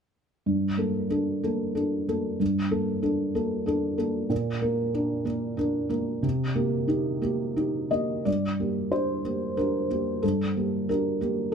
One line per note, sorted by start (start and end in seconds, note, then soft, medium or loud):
0.46 2.37 G2 soft
0.77 1.07 A#3 soft
0.77 1.08 A4 soft
1.10 1.40 D4 soft
1.10 1.40 A4 soft
1.43 1.73 A#3 soft
1.43 1.73 A4 soft
1.75 2.05 D4 soft
1.75 2.05 A4 soft
2.09 2.37 A#3 soft
2.09 2.37 A4 soft
2.40 4.26 G2 soft
2.71 3.00 A#3 soft
2.71 3.00 A4 soft
3.02 3.31 D4 soft
3.02 3.32 A4 soft
3.35 3.64 A#3 soft
3.35 3.64 A4 soft
3.66 3.95 D4 soft
3.66 3.96 A4 soft
3.98 4.27 A#3 soft
3.98 4.27 A4 soft
4.30 6.19 A#2 soft
4.61 4.91 A#3 soft
4.61 4.91 A#4 soft
4.94 5.23 D4 soft
4.94 5.23 A#4 soft
5.25 5.55 A#3 soft
5.25 5.55 A#4 soft
5.57 5.87 D4 soft
5.57 5.88 A#4 soft
5.89 6.19 A#3 soft
5.89 6.20 A#4 soft
6.23 8.22 C3 soft
6.55 6.86 A#3 soft
6.55 6.86 G4 soft
6.88 7.19 D#4 soft
6.88 7.19 G4 soft
7.22 7.53 A#3 soft
7.22 7.53 G4 soft
7.56 7.88 D#4 soft
7.56 7.89 G4 soft
7.91 8.23 A#3 soft
7.91 8.23 G4 soft
7.91 8.26 D#5 medium
8.25 10.18 G2 soft
8.25 8.91 D5 soft
8.60 8.89 A#3 soft
8.60 8.89 G4 soft
8.92 9.21 D4 soft
8.92 9.21 G4 soft
8.92 9.57 C5 soft
9.25 9.54 A#3 soft
9.25 9.54 G4 soft
9.57 9.87 D4 soft
9.57 9.87 G4 soft
9.57 10.23 A#4 medium
9.90 10.20 A#3 soft
9.90 10.20 G4 soft
10.22 11.54 G2 soft
10.22 10.88 A4 soft
10.56 10.85 A#3 soft
10.56 10.86 G4 soft
10.89 11.18 D4 soft
10.89 11.18 G4 soft
10.89 11.52 A#4 medium
11.21 11.49 A#3 soft
11.21 11.49 G4 soft